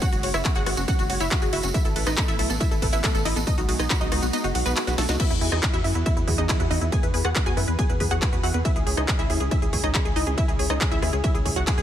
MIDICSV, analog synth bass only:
0, 0, Header, 1, 2, 480
1, 0, Start_track
1, 0, Tempo, 431655
1, 19, Time_signature, 4, 2, 24, 8
1, 13148, End_track
2, 0, Start_track
2, 0, Title_t, "Analog synth bass"
2, 0, Program_c, 0, 38
2, 138, Note_on_c, 0, 30, 89
2, 233, Note_off_c, 0, 30, 0
2, 258, Note_on_c, 0, 30, 104
2, 353, Note_off_c, 0, 30, 0
2, 379, Note_on_c, 0, 30, 92
2, 474, Note_off_c, 0, 30, 0
2, 619, Note_on_c, 0, 30, 89
2, 713, Note_off_c, 0, 30, 0
2, 739, Note_on_c, 0, 32, 101
2, 834, Note_off_c, 0, 32, 0
2, 858, Note_on_c, 0, 30, 89
2, 953, Note_off_c, 0, 30, 0
2, 1099, Note_on_c, 0, 30, 89
2, 1193, Note_off_c, 0, 30, 0
2, 1219, Note_on_c, 0, 30, 110
2, 1313, Note_off_c, 0, 30, 0
2, 1339, Note_on_c, 0, 30, 91
2, 1433, Note_off_c, 0, 30, 0
2, 1579, Note_on_c, 0, 30, 88
2, 1673, Note_off_c, 0, 30, 0
2, 1699, Note_on_c, 0, 30, 103
2, 1794, Note_off_c, 0, 30, 0
2, 1819, Note_on_c, 0, 30, 93
2, 1913, Note_off_c, 0, 30, 0
2, 2059, Note_on_c, 0, 33, 85
2, 2153, Note_off_c, 0, 33, 0
2, 2179, Note_on_c, 0, 33, 107
2, 2273, Note_off_c, 0, 33, 0
2, 2299, Note_on_c, 0, 33, 93
2, 2394, Note_off_c, 0, 33, 0
2, 2539, Note_on_c, 0, 33, 90
2, 2633, Note_off_c, 0, 33, 0
2, 2659, Note_on_c, 0, 35, 105
2, 2753, Note_off_c, 0, 35, 0
2, 2778, Note_on_c, 0, 33, 96
2, 2873, Note_off_c, 0, 33, 0
2, 3018, Note_on_c, 0, 33, 90
2, 3113, Note_off_c, 0, 33, 0
2, 3138, Note_on_c, 0, 33, 108
2, 3233, Note_off_c, 0, 33, 0
2, 3258, Note_on_c, 0, 33, 94
2, 3353, Note_off_c, 0, 33, 0
2, 3498, Note_on_c, 0, 33, 86
2, 3593, Note_off_c, 0, 33, 0
2, 3618, Note_on_c, 0, 33, 101
2, 3713, Note_off_c, 0, 33, 0
2, 3739, Note_on_c, 0, 33, 99
2, 3833, Note_off_c, 0, 33, 0
2, 3978, Note_on_c, 0, 35, 92
2, 4073, Note_off_c, 0, 35, 0
2, 4099, Note_on_c, 0, 35, 100
2, 4193, Note_off_c, 0, 35, 0
2, 4219, Note_on_c, 0, 35, 93
2, 4313, Note_off_c, 0, 35, 0
2, 4459, Note_on_c, 0, 35, 88
2, 4554, Note_off_c, 0, 35, 0
2, 4579, Note_on_c, 0, 37, 102
2, 4673, Note_off_c, 0, 37, 0
2, 4699, Note_on_c, 0, 35, 91
2, 4793, Note_off_c, 0, 35, 0
2, 4939, Note_on_c, 0, 30, 91
2, 5033, Note_off_c, 0, 30, 0
2, 5059, Note_on_c, 0, 35, 106
2, 5154, Note_off_c, 0, 35, 0
2, 5179, Note_on_c, 0, 35, 93
2, 5274, Note_off_c, 0, 35, 0
2, 5419, Note_on_c, 0, 35, 89
2, 5513, Note_off_c, 0, 35, 0
2, 5539, Note_on_c, 0, 35, 100
2, 5633, Note_off_c, 0, 35, 0
2, 5659, Note_on_c, 0, 37, 94
2, 5753, Note_off_c, 0, 37, 0
2, 5899, Note_on_c, 0, 40, 91
2, 5993, Note_off_c, 0, 40, 0
2, 6019, Note_on_c, 0, 40, 100
2, 6114, Note_off_c, 0, 40, 0
2, 6139, Note_on_c, 0, 40, 94
2, 6233, Note_off_c, 0, 40, 0
2, 6379, Note_on_c, 0, 40, 86
2, 6474, Note_off_c, 0, 40, 0
2, 6499, Note_on_c, 0, 42, 103
2, 6594, Note_off_c, 0, 42, 0
2, 6619, Note_on_c, 0, 40, 92
2, 6713, Note_off_c, 0, 40, 0
2, 6859, Note_on_c, 0, 40, 85
2, 6954, Note_off_c, 0, 40, 0
2, 6979, Note_on_c, 0, 40, 100
2, 7073, Note_off_c, 0, 40, 0
2, 7099, Note_on_c, 0, 40, 92
2, 7194, Note_off_c, 0, 40, 0
2, 7339, Note_on_c, 0, 40, 88
2, 7433, Note_off_c, 0, 40, 0
2, 7459, Note_on_c, 0, 40, 97
2, 7553, Note_off_c, 0, 40, 0
2, 7579, Note_on_c, 0, 40, 95
2, 7674, Note_off_c, 0, 40, 0
2, 7819, Note_on_c, 0, 40, 90
2, 7914, Note_off_c, 0, 40, 0
2, 7939, Note_on_c, 0, 40, 104
2, 8034, Note_off_c, 0, 40, 0
2, 8060, Note_on_c, 0, 40, 93
2, 8154, Note_off_c, 0, 40, 0
2, 8299, Note_on_c, 0, 40, 87
2, 8393, Note_off_c, 0, 40, 0
2, 8418, Note_on_c, 0, 42, 107
2, 8513, Note_off_c, 0, 42, 0
2, 8538, Note_on_c, 0, 40, 94
2, 8633, Note_off_c, 0, 40, 0
2, 8779, Note_on_c, 0, 40, 86
2, 8873, Note_off_c, 0, 40, 0
2, 8899, Note_on_c, 0, 40, 107
2, 8993, Note_off_c, 0, 40, 0
2, 9018, Note_on_c, 0, 40, 96
2, 9113, Note_off_c, 0, 40, 0
2, 9258, Note_on_c, 0, 40, 89
2, 9353, Note_off_c, 0, 40, 0
2, 9378, Note_on_c, 0, 40, 101
2, 9473, Note_off_c, 0, 40, 0
2, 9498, Note_on_c, 0, 40, 100
2, 9593, Note_off_c, 0, 40, 0
2, 9738, Note_on_c, 0, 37, 90
2, 9833, Note_off_c, 0, 37, 0
2, 9858, Note_on_c, 0, 37, 99
2, 9953, Note_off_c, 0, 37, 0
2, 9978, Note_on_c, 0, 37, 92
2, 10073, Note_off_c, 0, 37, 0
2, 10219, Note_on_c, 0, 37, 85
2, 10313, Note_off_c, 0, 37, 0
2, 10338, Note_on_c, 0, 39, 101
2, 10433, Note_off_c, 0, 39, 0
2, 10459, Note_on_c, 0, 37, 89
2, 10554, Note_off_c, 0, 37, 0
2, 10699, Note_on_c, 0, 37, 89
2, 10793, Note_off_c, 0, 37, 0
2, 10819, Note_on_c, 0, 37, 106
2, 10913, Note_off_c, 0, 37, 0
2, 10939, Note_on_c, 0, 37, 89
2, 11033, Note_off_c, 0, 37, 0
2, 11178, Note_on_c, 0, 37, 90
2, 11273, Note_off_c, 0, 37, 0
2, 11299, Note_on_c, 0, 37, 99
2, 11393, Note_off_c, 0, 37, 0
2, 11418, Note_on_c, 0, 37, 97
2, 11513, Note_off_c, 0, 37, 0
2, 11659, Note_on_c, 0, 37, 91
2, 11753, Note_off_c, 0, 37, 0
2, 11778, Note_on_c, 0, 37, 99
2, 11873, Note_off_c, 0, 37, 0
2, 11898, Note_on_c, 0, 37, 90
2, 11993, Note_off_c, 0, 37, 0
2, 12138, Note_on_c, 0, 37, 87
2, 12233, Note_off_c, 0, 37, 0
2, 12258, Note_on_c, 0, 39, 104
2, 12353, Note_off_c, 0, 39, 0
2, 12379, Note_on_c, 0, 37, 94
2, 12473, Note_off_c, 0, 37, 0
2, 12619, Note_on_c, 0, 37, 89
2, 12713, Note_off_c, 0, 37, 0
2, 12739, Note_on_c, 0, 37, 103
2, 12833, Note_off_c, 0, 37, 0
2, 12859, Note_on_c, 0, 37, 93
2, 12953, Note_off_c, 0, 37, 0
2, 13098, Note_on_c, 0, 37, 88
2, 13148, Note_off_c, 0, 37, 0
2, 13148, End_track
0, 0, End_of_file